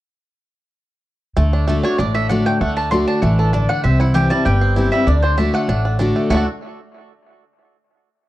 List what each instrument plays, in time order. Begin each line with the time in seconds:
1.37 upright bass D2, steel-string acoustic guitar D3, five-string banjo A3
1.53 five-string banjo D4
1.68 steel-string acoustic guitar D3 A3 D4 F#4, five-string banjo A3
1.83 five-string banjo D4, steel-string acoustic guitar D4 F#4, mandolin C#5
1.98 upright bass A1, steel-string acoustic guitar A2, five-string banjo D4, mandolin D5
2.14 five-string banjo A3, mandolin E5
2.29 steel-string acoustic guitar D3 A3 D4 F#4, five-string banjo D4, mandolin F#5
2.46 five-string banjo A3, mandolin G5
2.61 upright bass D2, steel-string acoustic guitar D3, five-string banjo A3, mandolin F#5
2.76 five-string banjo D4, mandolin A5
2.91 steel-string acoustic guitar D3 A3 D4 F#4, five-string banjo D4, mandolin C6
3.07 five-string banjo D4, mandolin A5
3.22 upright bass A1, steel-string acoustic guitar E3, five-string banjo A3, mandolin F#5
3.39 five-string banjo D4, mandolin A4
3.53 steel-string acoustic guitar D3, five-string banjo D4, mandolin D5
3.69 five-string banjo D4, mandolin F#5
3.83 upright bass C2, steel-string acoustic guitar C3, five-string banjo C4, mandolin E5
3.99 five-string banjo E4, mandolin F#5
4.14 steel-string acoustic guitar E3 G3 C4 E4, five-string banjo G4, mandolin G5
4.30 five-string banjo G3, steel-string acoustic guitar C4 E4, mandolin A5
4.45 upright bass G1, steel-string acoustic guitar G2, five-string banjo G4, mandolin G5
4.61 five-string banjo C4
4.76 steel-string acoustic guitar E3 G3 C4 E4, five-string banjo E4
4.92 five-string banjo G3, steel-string acoustic guitar C4 E4, mandolin E5
5.07 upright bass D2, steel-string acoustic guitar D3, five-string banjo D4, mandolin D5
5.22 five-string banjo D4, mandolin C5
5.38 steel-string acoustic guitar D3 A3 D4 F#4, five-string banjo D4, mandolin E5
5.54 five-string banjo A3, mandolin F#5
5.68 upright bass A1, steel-string acoustic guitar A2, five-string banjo D4
5.85 five-string banjo D4
5.99 steel-string acoustic guitar D3 A3 D4 F#4, five-string banjo D4
6.16 five-string banjo A3
6.30 upright bass D2, steel-string acoustic guitar D3 A3 D4 F#4, five-string banjo A3 D4, mandolin F#5
6.34 five-string banjo F#4 A4